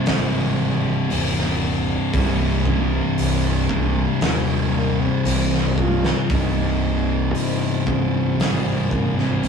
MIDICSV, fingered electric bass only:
0, 0, Header, 1, 2, 480
1, 0, Start_track
1, 0, Key_signature, -3, "minor"
1, 0, Tempo, 1038062
1, 990, Time_signature, 4, 2, 24, 8
1, 4385, End_track
2, 0, Start_track
2, 0, Title_t, "Fingered electric bass"
2, 0, Program_c, 0, 33
2, 33, Note_on_c, 0, 32, 106
2, 423, Note_off_c, 0, 32, 0
2, 517, Note_on_c, 0, 27, 89
2, 905, Note_off_c, 0, 27, 0
2, 987, Note_on_c, 0, 24, 96
2, 1380, Note_off_c, 0, 24, 0
2, 1471, Note_on_c, 0, 24, 92
2, 1862, Note_off_c, 0, 24, 0
2, 1948, Note_on_c, 0, 27, 102
2, 2341, Note_off_c, 0, 27, 0
2, 2426, Note_on_c, 0, 24, 98
2, 2820, Note_off_c, 0, 24, 0
2, 2912, Note_on_c, 0, 24, 84
2, 3375, Note_off_c, 0, 24, 0
2, 3395, Note_on_c, 0, 31, 87
2, 3858, Note_off_c, 0, 31, 0
2, 3878, Note_on_c, 0, 32, 97
2, 4341, Note_off_c, 0, 32, 0
2, 4359, Note_on_c, 0, 36, 87
2, 4385, Note_off_c, 0, 36, 0
2, 4385, End_track
0, 0, End_of_file